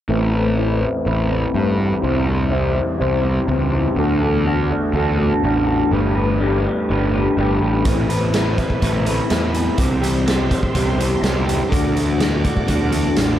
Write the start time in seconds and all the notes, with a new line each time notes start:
0.08 A1 E2 A2 E3 A3 C4 E4 B4
0.32 A3 C4 E4 B4
0.56 A2 E3 A3 C4 E4 B4
0.80 A3 C4 E4 B4
1.05 A1 A3 C4 E4 B4
1.28 A3 C4 E4 B4
1.53 G2 A2 E3 A3 C4 E4 B4
1.77 A3 C4 E4 B4
2.01 C2 C3 E3 G3 C4 E4 C5
2.24 G3 C4 E4 C5
2.49 C3 E3 G3 C4 E4 C5
2.73 G3 C4 E4 C5
2.98 C2 G3 C4 E4 C5
3.22 G3 C4 E4 C5
3.46 C#2 C3 E3 G3 C4 E4 C5
3.72 G3 C4 E4 C5
3.96 D2 D3 A3 D4 F#4 A4
4.21 D4 F#4 A4
4.45 D3 A3 D4 F#4 A4
4.70 D4 F#4 A4
4.93 D2 A3 D4 F#4 A4
5.18 D4 F#4 A4
5.43 A1 D3 A3 D4 F#4 A4
5.66 D4 F#4 A4
5.91 G1 G3 A3 D4 G4 B4
6.15 D4 G4 B4
6.39 G3 A3 D4 G4 B4
6.64 D4 G4 B4
6.89 G1 A3 D4 G4 B4
7.13 D4 G4 B4
7.37 G1 G3 A3 D4 G4 B4
7.61 A1 D4 G4 B4
7.85 A1 E2 A2 E3 A3 C4 E4 A4 B4 E5 B5, kick, closed hi-hat
8.09 A3 C4 E4 B4, closed hi-hat
8.33 A2 E3 A3 C4 E4 B4, snare, closed hi-hat
8.57 A3 C4 E4 B4, kick, snare, closed hi-hat
8.70 kick
8.81 A1 A3 C4 E4 B4, kick, closed hi-hat
9.05 A3 C4 E4 B4, closed hi-hat
9.29 E2 A2 E3 A3 C4 E4 B4, snare, closed hi-hat
9.52 A3 C4 E4 B4, closed hi-hat
9.77 C2 C3 E3 G3 C4 G4 C6, kick, closed hi-hat
10.01 G3 C4 G4, closed hi-hat
10.25 C3 E3 G3 C4 G4, snare, closed hi-hat
10.49 G3 C4 G4, kick, closed hi-hat
10.63 kick
10.73 C2 E3 G3 C4 G4, kick, closed hi-hat
10.96 G3 C4 G4, closed hi-hat
11.21 C2 C3 E3 G3 C4 G4, snare, closed hi-hat
11.45 G3 C4 G4, closed hi-hat
11.69 D2 D3 A3 D4 F#4 A4 D5 F#5 D6, kick, closed hi-hat
11.94 A3 D4 F#4, closed hi-hat
12.18 D3 A3 D4 F#4, snare, closed hi-hat
12.44 A3 D4 F#4, kick, closed hi-hat
12.57 kick
12.67 D2 D3 A3 D4 F#4, kick, closed hi-hat
12.92 A3 D4 F#4, closed hi-hat
13.16 A1 D3 A3 D4 F#4, snare, closed hi-hat